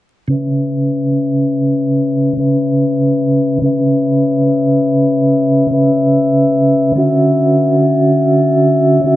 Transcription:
0.28 C#3 C#4 B4
0.32 E5
2.37 C#3 C#4 B4 E5
3.62 C#3 C#4 B4 E5
5.71 C#3 C#4 B4 E5
6.95 D3 C#4 F#4
6.99 E5
9.04 D3 C#4 F#4 E5

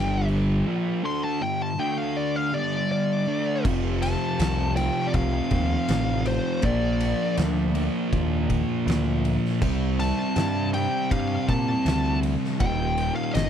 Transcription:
Already playing: G1 G2 D3 G3 G5
0.28 crash
0.67 A#2 F3 A#3
1.04 D3 A3 D4 C6
1.24 A5
1.41 G2 D3 G5
1.62 A5
1.78 D3 A3 D4 G5
1.98 F5
2.17 D5
2.36 F5
2.53 G2 D3 G3 D5
2.92 D5
3.28 D3 A3 D4
3.65 F1 F2 C3 F3, kick, crash
4.02 A5, snare, ride
4.39 C2, snare, ride
4.77 F2 C3 F3 G5, ride
5.07 D5
5.14 C2 F5, kick, ride
5.50 D#2, kick, ride
5.88 A1, snare, ride
6.26 C5, ride
6.62 A#1 A#2 F3 A#3 D5, kick, ride
7.00 ride
7.37 D2, snare, ride
7.75 A#2 F3 A#3, ride
8.12 D#2, kick, ride
8.50 kick, ride
8.86 D2, snare, ride
9.25 ride
9.45 snare
9.62 C2 C3 G3 C4, kick, crash
9.99 A5, snare, ride
10.36 G2, snare, ride
10.74 C3 G3 C4 G5, ride
11.11 G2 F5, kick, ride
11.48 A#2 A5, kick, ride
11.85 D2, snare, ride
12.23 ride
12.44 snare
12.60 D#1 D#2 A#2 D#3 G5, kick, ride
12.98 ride
13.15 F5
13.34 G1 D#5, snare, ride

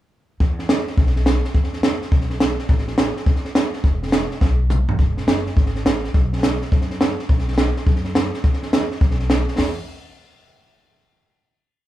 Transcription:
0.40 E2, kick, snare
0.59 snare
0.69 snare, hi-hat pedal
0.87 snare
0.97 B1, kick, snare
1.07 snare
1.16 snare
1.26 snare, hi-hat pedal
1.44 snare
1.54 E2, kick, snare
1.64 snare
1.73 snare
1.83 snare, hi-hat pedal
2.02 snare
2.12 B1, kick, snare
2.21 snare
2.30 snare
2.40 snare, hi-hat pedal
2.59 snare
2.69 A1, kick, snare
2.78 snare
2.88 snare
2.98 snare, hi-hat pedal
3.17 snare
3.26 E2, kick, snare
3.36 snare
3.45 snare
3.55 snare, hi-hat pedal
3.73 snare
3.84 E1, kick, snare
4.03 snare
4.08 snare
4.12 snare, hi-hat pedal
4.31 snare
4.41 B1, kick, snare
4.70 hi-hat pedal, mid tom
4.89 floor tom
4.99 E1, kick, snare
5.17 snare
5.27 F#1, snare, hi-hat pedal
5.46 snare
5.56 G#1, kick, snare
5.66 snare
5.75 snare
5.85 A1, snare, hi-hat pedal
6.04 snare
6.14 B1, kick, snare
6.33 snare
6.38 snare
6.43 snare, hi-hat pedal
6.62 snare
6.72 F#2, kick, snare
6.81 snare
6.91 snare
7.01 snare, hi-hat pedal
7.19 snare
7.29 B1, kick, snare
7.39 snare
7.48 snare
7.53 snare
7.58 snare, hi-hat pedal
7.77 snare
7.87 F#2, kick, snare
7.96 snare
8.05 snare
8.15 snare, hi-hat pedal
8.34 snare
8.44 E2, kick, snare
8.53 snare
8.63 snare
8.73 snare, hi-hat pedal
8.91 snare
9.01 B1, kick, snare
9.11 snare
9.19 snare
9.30 snare, hi-hat pedal
9.48 snare
9.58 E2, snare, open hi-hat

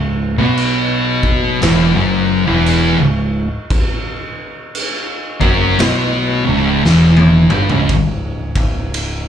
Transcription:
Already playing: C#1 C#2
0.38 B1 B2 B3
0.57 crash
1.23 kick
1.62 E1 E2 E3, snare, crash
1.94 F#1 F#2 F#3
2.46 E1 E2 E3
2.66 crash
2.99 C#1 C#2
3.70 kick, crash
4.75 crash
5.40 F#1 F#2 F#3, kick
5.79 B1 B2 B3, snare, crash
6.45 C#1 C#2 C#3
6.84 E1 E2 E3, snare
7.17 high tom
7.50 G1 G2 G3, mid tom
7.70 C#1 C#2 C#3, floor tom
7.89 C#1, kick, ride
8.55 C#1, kick, ride
8.94 ride

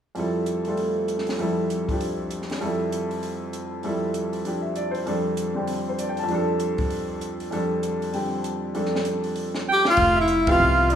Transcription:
0.15 F2 F3 G3 E4, open hi-hat
0.19 A4
0.46 closed hi-hat
0.65 G3 A3 F4, open hi-hat
0.69 A4
0.77 open hi-hat
1.08 closed hi-hat
1.18 snare
1.27 snare, open hi-hat
1.39 F2 F3 G3 E4 A4, open hi-hat
1.70 closed hi-hat
1.89 F3 D4, kick, open hi-hat
1.93 G4
2.01 open hi-hat
2.31 closed hi-hat
2.42 snare
2.50 snare, open hi-hat
2.61 F2 F3 G3 E4 A4, open hi-hat
2.92 closed hi-hat
3.11 open hi-hat
3.23 open hi-hat
3.53 closed hi-hat
3.83 F2 F3 G3 E4 A4, open hi-hat
4.14 closed hi-hat
4.33 open hi-hat
4.45 F3 D4 G4, open hi-hat
4.62 E5
4.76 D5, closed hi-hat
4.91 C5, open hi-hat
5.06 F2 F3 G3 D4 A4, open hi-hat
5.37 closed hi-hat
5.54 D3 G3 C4 G4
5.67 open hi-hat
5.89 C5
5.99 D5, closed hi-hat
6.09 G5
6.17 A5, open hi-hat
6.23 F2 F3
6.28 G3 D4, open hi-hat
6.35 A4
6.60 closed hi-hat
6.78 kick, open hi-hat
6.90 open hi-hat
7.21 closed hi-hat
7.40 open hi-hat
7.51 F2 F3 G3 D4 A4, open hi-hat
7.83 closed hi-hat
8.02 open hi-hat
8.12 D3 G3 C4 G4, open hi-hat
8.44 closed hi-hat
8.75 F2 F3 G3 D4 A4, open hi-hat
8.86 snare
8.95 snare
9.05 closed hi-hat
9.24 open hi-hat
9.36 open hi-hat
9.55 snare
9.69 G4 G5
9.85 F5, snare
9.90 F4
9.97 F1, kick, ride
10.16 E5
10.21 E4
10.28 closed hi-hat
10.47 C3 F3 B3 F4 G4 F5, kick, ride
10.51 F4
10.60 C2
10.90 D5, closed hi-hat

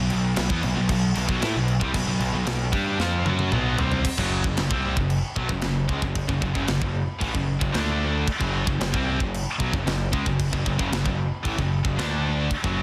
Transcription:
Already playing: B1 F#3
0.00 B2 F#3
0.10 B1 B2 F#3, crash
0.34 B1 B2 F#3, snare, crash
0.49 E2 E3 B3, kick
0.62 B1 B2 F#3, crash
0.76 B1 B2 F#3
0.88 B1 B2 F#3, kick, crash
1.14 B1 B2 F#3, crash
1.26 B1 B2 F#3, kick
1.41 A2 A3 E4, snare, crash
1.54 B1 B2 F#3
1.68 crash
1.80 C2 C3 G3, kick
1.93 B1 B2 F#3, kick, crash
2.06 B1 B2 F#3
2.20 B1 B2 F#3, crash
2.33 B1 B2 F#3
2.46 B1 B2 F#3, snare, crash
2.72 G2 G3 D4 G4, kick, crash
2.99 F2 F3 C4 F4, snare
3.25 F#2 F#3 C#4 F#4, high tom
3.39 high tom
3.52 B1 B2 F#3 B3, mid tom
3.78 C2 C3 G3 C4, floor tom
3.92 floor tom
4.05 kick, crash
4.17 F#1 F#2 C#3 F#3, kick
4.44 F#1 F#2 C#3, kick
4.57 F#1 F#2 C#3, snare, crash
4.70 C2 C3 G3 C4, kick
4.96 F#1 F#2 C#3, kick
5.10 crash
5.36 B1 B2 F#3, kick
5.49 F#1 F#2 C#3, kick
5.61 F#1 F#2 C#3, snare, crash
5.88 C#2 C#3 G#3, kick
6.02 F#1 F#2 C#3, kick
6.15 kick, crash
6.28 F#1 F#2 C#3, kick
6.41 F#1 F#2 C#3, kick
6.55 F#1 F#2 C#3, kick
6.68 F#1 F#2 C#3, snare, crash
6.82 F#1 F#2 C#3, kick
7.21 A1 A2 E3, kick, crash
7.34 F#1 F#2 C#3, kick
7.60 F#1 F#2 C#3, kick
7.73 D2 D3 A3 D4, snare, crash
8.27 kick, crash
8.41 F#1 F#2 C#3 F#3, kick
8.67 F#1 F#2 C#3, kick
8.80 F#1 F#2 C#3, snare, crash
8.93 C2 C3 G3 C4, kick
9.20 F#1 F#2 C#3, kick
9.34 crash
9.59 B1 B2 F#3, kick
9.72 F#1 F#2 C#3, kick
9.86 F#1 F#2 C#3, snare, crash
10.12 C#2 C#3 G#3, kick
10.26 F#1 F#2 C#3, kick
10.40 kick, crash
10.53 F#1 F#2 C#3, kick
10.65 F#1 F#2 C#3, kick
10.78 F#1 F#2 C#3, kick
10.91 F#1 F#2 C#3, snare, crash
10.95 F#2 C#3
11.04 F#1 F#2 C#3, kick
11.43 A1 A2 E3, kick, crash
11.56 F#1 F#2 C#3, kick
11.83 F#1 F#2 C#3, kick
11.96 D2 D3 A3 D4, snare, crash
12.51 kick, crash
12.63 F#1 F#2 C#3 F#3, kick

